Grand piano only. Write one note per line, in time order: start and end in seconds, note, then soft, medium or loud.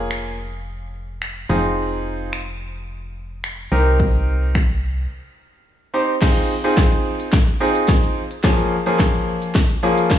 0.00 0.36 A#3 medium
0.00 0.36 C#4 medium
0.00 0.36 F4 medium
0.00 0.36 G#4 loud
1.49 2.39 C4 medium
1.49 2.39 D#4 medium
1.49 2.39 F4 medium
1.49 2.39 G#4 medium
3.72 4.61 C4 medium
3.72 4.61 D#4 medium
3.72 4.61 G4 medium
3.72 4.61 A#4 loud
5.94 6.14 C4 medium
5.94 6.14 D#4 medium
5.94 6.15 G4 medium
5.94 6.15 C5 medium
6.21 6.52 C4 medium
6.21 6.52 D#4 medium
6.21 6.52 F4 medium
6.21 6.52 G#4 medium
6.64 7.34 C4 medium
6.64 7.34 D#4 medium
6.64 7.34 F4 medium
6.64 7.34 G#4 medium
7.60 8.21 C4 medium
7.60 8.21 D#4 medium
7.60 8.21 F4 medium
7.60 8.21 G#4 medium
8.44 8.74 F3 medium
8.44 8.74 A#3 medium
8.44 8.74 C#4 medium
8.44 8.74 F4 medium
8.44 8.74 G#4 medium
8.86 9.56 F3 medium
8.86 9.56 A#3 medium
8.86 9.56 C#4 medium
8.86 9.56 F4 medium
8.86 9.56 G#4 medium
9.83 10.19 F3 medium
9.83 10.19 A#3 medium
9.83 10.19 C#4 medium
9.83 10.19 F4 medium
9.83 10.19 G#4 medium